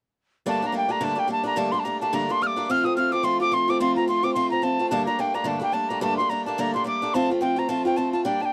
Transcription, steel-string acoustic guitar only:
0.46 G2 D3 G3 A3 A#3 D4
0.62 G3 A3 A#3 D4
0.72 G3 A3 A#3 D4
0.88 G3 A3 A#3 D4
1.01 G2 D3 G3 A3 A#3 D4
1.15 G3 A3 A#3 D4
1.28 G3 A3 A#3 D4
1.43 G3 A3 A#3 D4
1.56 G2 D3 G3 A3 A#3 D4
1.72 G3 A3 A#3 D4
1.85 G3 A3 A#3 D4
2.01 G3 A3 A#3 D4
2.13 G2 D3 G3 A3 A#3 D4
2.29 G3 A3 A#3 D4
2.42 G3 A3 A#3 D4
2.56 G3 A3 A#3 D4
2.69 F3 A3 C4 F4
2.83 A3 C4 F4
2.97 F3 A3 C4 F4
3.12 A3 C4 F4
3.23 F3 A3 C4 F4
3.40 A3 C4 F4
3.52 F3 A3 C4 F4
3.68 A3 C4 F4
3.80 F3 A3 C4 F4
3.96 A3 C4 F4
4.08 F3 A3 C4 F4
4.23 A3 C4 F4
4.35 F3 A3 C4 F4
4.50 A3 C4 F4
4.62 F3 A3 C4 F4
4.79 A3 C4 F4
4.91 G2 D3 G3 A3 A#3 D4
5.07 G3 A3 A#3 D4
5.19 G3 A3 A#3 D4
5.34 G3 A3 A#3 D4
5.44 G2 D3 G3 A3 A#3 D4
5.60 G3 A3 A#3 D4
5.72 G3 A3 A#3 D4
5.90 G3 A3 A#3 D4
6.01 G2 D3 G3 A3 A#3 D4
6.19 G3 A3 A#3 D4
6.30 G3 A3 A#3 D4
6.46 G3 A3 A#3 D4
6.58 G2 D3 G3 A3 A#3 D4
6.74 G3 A3 A#3 D4
6.84 G3 A3 A#3 D4
7.02 G3 A3 A#3 D4
7.14 F3 A3 C4 F4
7.30 A3 C4 F4
7.41 F3 A3 C4 F4
7.56 A3 C4 F4
7.69 F3 A3 C4 F4
7.85 A3 C4 F4
7.96 F3 A3 C4 F4
8.13 A3 C4 F4
8.25 G3 A#3 D4 G4
8.40 A#3 D4 G4

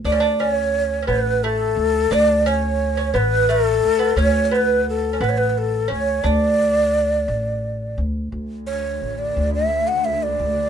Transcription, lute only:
0.05 D4
0.12 C#4
0.20 D4
0.40 C#4
1.02 C#4
1.07 B3
1.44 A3
2.11 D4
2.46 C#4
2.97 C#4
3.14 B3
3.49 A3
3.99 B3
4.17 C#4
4.51 B3
5.13 C#4
5.21 B3
5.88 C#4
6.24 D4

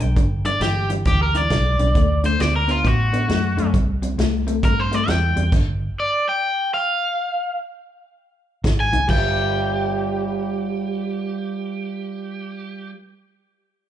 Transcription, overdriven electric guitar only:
0.02 G5
0.46 D5
0.62 G4
1.07 G4
1.23 A#4
1.37 D5
2.26 C5
2.41 D5
2.56 A#4
2.71 F4
2.87 F#4
4.65 A#4
4.80 C5
4.94 D5
5.10 G5
6.00 D5
6.29 G5
6.74 F5
8.80 G#5
9.10 G5

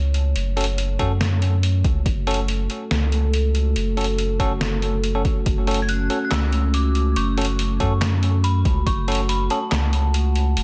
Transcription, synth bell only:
5.82 G#6
5.89 F#6
6.25 F#6
6.32 E6
6.74 D6
7.17 C#6
8.44 B5
8.86 C#6
9.29 B5
9.51 A5

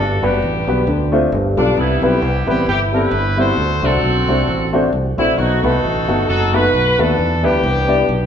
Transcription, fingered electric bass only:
Already playing: G1
0.22 F#1
0.42 A1
0.67 B1
0.87 D2
1.32 G1
1.57 B1
1.77 C2
2.02 B1
2.22 C2
2.47 A1
2.67 G1
3.11 G1
3.57 D2
3.82 C2
4.02 B1
4.27 C2
4.47 A1
4.93 C2
5.18 A#1
5.38 B1
5.64 C2
5.83 A1
6.09 G1
6.29 F#1
6.73 B1
6.98 D#2
7.18 E2
7.44 D2
7.63 C2
8.09 B1

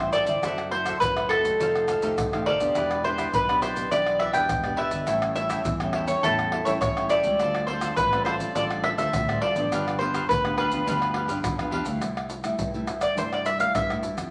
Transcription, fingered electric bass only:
0.27 G1
0.42 F#1
1.01 F#1
1.60 F1
2.02 F1
2.18 B1
2.33 A1
2.47 G1
2.60 F1
2.76 E1
3.34 B1
3.92 B1
4.34 E1
4.50 E1
4.92 G1
5.08 A1
5.65 E2
6.23 E2
6.66 A1
6.81 A1
7.24 C#2
7.39 D2
7.98 A1
8.55 A1
8.98 D2
9.13 D2
9.56 A1
9.71 G1
10.29 D2
10.87 D2
11.29 G1
11.44 G1
11.60 F2
11.73 E2
11.87 D2
12.02 C2
12.59 C2
13.17 G2
13.75 G2
14.17 F2

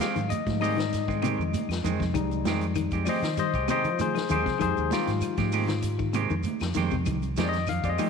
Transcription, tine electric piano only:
0.01 F5
0.30 D#5
0.60 G3 G#3 D#4 D#5
2.15 G3 G#3 D#4
3.05 C5 D5
3.09 D#5
3.39 C5 D#5
3.70 C5 D#5
4.01 G#4 C5
4.31 G#4 C5
4.60 G#3 D#4 G4 G#4 C5
4.93 F4
7.44 D5
7.49 D#5
7.69 F5
7.85 D5
7.89 D#5
7.98 G3 G#3 D#4

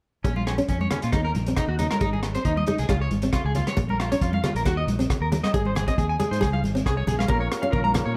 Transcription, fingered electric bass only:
0.24 A#1
0.69 F2
1.04 A#2
1.13 D#2
1.35 A#1
1.68 D#2
2.01 G#1
2.45 D#2
2.79 C2
2.89 C#2
3.11 G#1
3.45 C#2
3.77 A#1
4.21 F2
4.55 A#1
4.66 D#2
4.87 A#1
5.20 D#2
5.54 G#1
5.98 D#2
6.31 G#2
6.42 C#2
6.63 G#1
6.86 C2
7.07 A#1
7.29 A#1
7.73 A#1
8.06 A#2

